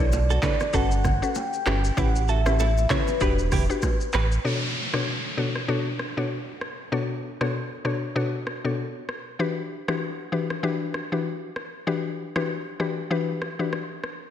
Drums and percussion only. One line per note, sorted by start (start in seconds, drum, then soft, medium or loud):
0.12 high bongo medium
0.12 shaker medium
0.30 high bongo medium
0.30 shaker medium
0.43 kick medium
0.43 clap medium
0.43 high bongo medium
0.43 low conga medium
0.43 shaker medium
0.60 cross-stick medium
0.60 low bongo medium
0.60 shaker medium
0.73 kick medium
0.73 shaker medium
0.91 shaker medium
1.04 kick loud
1.04 cross-stick medium
1.04 low bongo medium
1.04 low conga medium
1.04 shaker medium
1.23 shaker medium
1.35 high bongo medium
1.35 shaker medium
1.53 shaker soft
1.66 cross-stick medium
1.66 clap medium
1.66 low bongo medium
1.84 shaker medium
1.97 kick loud
1.97 low conga medium
1.97 shaker medium
2.16 shaker medium
2.28 shaker soft
2.46 cross-stick loud
2.46 low bongo medium
2.46 shaker medium
2.59 high bongo medium
2.59 shaker medium
2.78 high bongo medium
2.78 shaker medium
2.90 kick medium
2.90 cross-stick medium
2.90 clap medium
2.90 high bongo medium
2.90 low conga medium
2.90 shaker medium
3.07 low bongo medium
3.07 shaker medium
3.21 kick medium
3.21 shaker medium
3.39 shaker medium
3.52 kick loud
3.52 cross-stick medium
3.52 open hi-hat medium
3.52 low bongo medium
3.52 low conga medium
3.52 shaker medium
3.70 shaker medium
3.82 kick loud
3.82 cross-stick medium
3.82 high bongo medium
3.82 shaker medium
4.01 shaker soft
4.13 cross-stick medium
4.13 clap medium
4.13 low bongo medium
4.13 shaker medium
4.32 shaker medium
4.94 cross-stick loud
5.56 cross-stick medium
5.99 cross-stick medium
6.61 cross-stick medium
7.41 cross-stick loud
7.85 cross-stick medium
8.47 cross-stick medium
9.09 cross-stick medium
9.88 cross-stick loud
10.50 cross-stick medium
10.94 cross-stick medium
11.56 cross-stick medium
12.36 cross-stick loud
12.80 cross-stick medium
13.42 cross-stick medium
13.73 cross-stick medium
14.04 cross-stick medium